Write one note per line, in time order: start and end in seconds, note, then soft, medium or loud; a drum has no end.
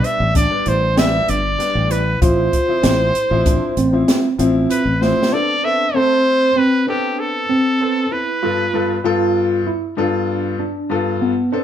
0.00 0.29 G3 medium
0.00 0.30 B3 medium
0.00 0.29 D4 medium
0.00 0.30 D4 medium
0.04 0.36 E5 medium
0.04 closed hi-hat medium
0.20 0.47 A1 medium
0.35 0.63 D4 medium
0.35 0.70 D5 medium
0.35 kick medium
0.35 snare soft
0.35 closed hi-hat medium
0.50 0.81 G3 medium
0.50 0.82 B3 medium
0.50 0.82 D4 medium
0.66 1.20 A1 medium
0.66 1.22 E4 medium
0.66 1.00 C5 medium
0.66 closed hi-hat soft
0.96 1.37 G3 medium
0.96 1.38 B3 medium
0.96 1.38 D4 medium
0.96 1.31 E5 medium
0.96 snare medium
0.96 closed hi-hat medium
1.28 1.55 G1 medium
1.28 1.84 D4 medium
1.28 1.93 D5 medium
1.28 closed hi-hat medium
1.58 2.00 G3 medium
1.58 2.00 B3 medium
1.58 2.00 D4 medium
1.58 snare soft
1.58 closed hi-hat medium
1.75 2.15 A1 medium
1.90 2.18 E4 medium
1.90 2.22 B4 medium
1.90 closed hi-hat medium
2.21 2.48 A1 medium
2.21 2.52 F3 medium
2.21 2.52 C4 medium
2.21 2.53 E4 medium
2.21 2.77 F4 medium
2.21 4.05 C5 medium
2.21 kick loud
2.21 closed hi-hat medium
2.53 kick medium
2.53 closed hi-hat medium
2.68 3.09 F3 medium
2.68 3.09 C4 medium
2.68 3.09 E4 medium
2.83 3.10 A1 medium
2.83 3.39 E4 medium
2.83 snare loud
2.83 closed hi-hat medium
3.15 closed hi-hat medium
3.31 3.57 A1 medium
3.31 3.71 F3 medium
3.31 3.71 C4 medium
3.31 3.72 E4 medium
3.46 3.74 D4 medium
3.46 kick medium
3.46 closed hi-hat medium
3.77 4.04 A1 medium
3.77 4.33 C4 medium
3.77 closed hi-hat medium
3.92 4.23 F3 medium
3.92 4.23 C4 medium
3.92 4.24 E4 medium
4.08 snare medium
4.08 closed hi-hat medium
4.38 4.66 A1 medium
4.38 4.79 F3 medium
4.38 4.80 C4 medium
4.38 4.95 C4 medium
4.38 4.80 E4 loud
4.38 closed hi-hat medium
4.70 5.03 B4 medium
4.70 closed hi-hat medium
4.85 5.12 A1 medium
5.01 5.32 F3 medium
5.01 5.29 A3 medium
5.01 5.31 C4 medium
5.01 5.33 E4 medium
5.01 5.35 C5 medium
5.01 snare soft
5.22 snare medium
5.32 5.52 B3 medium
5.32 5.53 C4 medium
5.32 5.88 D4 medium
5.32 5.53 A4 medium
5.32 5.66 D5 medium
5.63 5.84 B3 medium
5.63 5.84 C4 medium
5.63 5.84 A4 medium
5.63 5.96 E5 medium
5.94 6.55 A3 medium
5.94 6.50 C4 medium
5.94 6.56 C4 medium
5.94 6.56 A4 medium
5.94 6.59 C5 loud
6.56 6.84 C4 medium
6.56 6.88 B4 medium
6.87 7.48 B3 medium
6.87 7.48 C4 medium
6.87 7.43 D4 medium
6.87 7.21 G4 medium
6.87 7.49 A4 medium
7.20 8.14 A4 medium
7.49 8.05 C4 medium
7.80 8.21 B3 medium
7.80 8.21 C4 medium
7.80 8.22 A4 medium
8.12 8.39 E4 medium
8.12 9.05 B4 medium
8.42 8.63 G2 medium
8.42 8.63 B3 medium
8.42 8.98 F4 medium
8.42 8.63 F4 medium
8.42 8.64 A4 medium
8.73 8.94 G2 medium
8.73 8.94 B3 medium
8.73 8.94 F4 medium
8.73 8.95 A4 medium
9.04 9.65 G2 medium
9.04 9.66 B3 medium
9.04 9.60 F4 medium
9.04 9.66 F4 medium
9.04 9.66 A4 loud
9.67 9.94 E4 medium
9.97 10.58 G2 medium
9.97 10.58 B3 medium
9.97 10.53 D4 medium
9.97 10.59 F4 medium
9.97 10.59 A4 medium
10.59 11.15 D4 medium
10.89 11.31 G2 medium
10.89 11.31 B3 medium
10.89 11.31 F4 medium
10.89 11.32 A4 medium
11.22 11.50 B3 medium
11.52 11.64 B3 medium
11.52 11.64 C4 medium
11.52 11.64 D4 medium
11.52 11.64 A4 medium